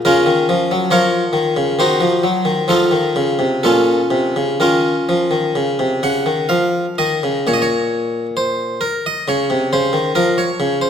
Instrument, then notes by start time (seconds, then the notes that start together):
harpsichord
0.05 C#3 C#4 F4 A#4
0.26 D#3
0.49 F3
0.71 F#3
0.91 F3 F4 A#4 C#5
1.33 D#3
1.57 C#3
1.79 D#3 D#4 F#4 C5
2.01 F3
2.23 F#3
2.45 D#3
2.68 F3 D#4 F4 A4
2.91 D#3
3.16 C#3
3.39 C3
3.63 A#2 C#4 F4 A4
4.11 C3
4.36 C#3
4.60 D#3 C#4 F4 A#4
5.09 F3
5.31 D#3
5.56 C#3
5.79 C3
6.03 C#3 F#5
6.26 D#3
6.49 F3 F5
6.98 D#3 D#5
7.23 C#3
7.47 A#2 C#5
7.53 D#5
7.62 C#5
8.37 C5
8.81 A#4
9.06 D#5
9.28 C#3 C#5
9.50 C3
9.73 C#3 C5
9.93 D#3
10.15 F3 A#4
10.38 C#5
10.60 C#3
10.82 C5